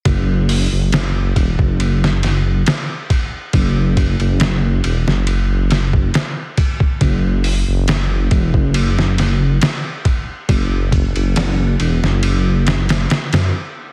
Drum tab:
RD |x---x-x-x-x-x-x-|x-xxx-x-x-x-x-x-|x---x-x-x-x-x-x-|x-xxx-x-x-xxxx--|
HH |--o-------------|----------------|--o-------------|----------------|
SD |----o----oo-o---|----o--o--o-o---|----o----oo-o---|----o--o--oooo--|
BD |o-----oo------o-|o-o--------o--oo|o-----oo------o-|o-o-------------|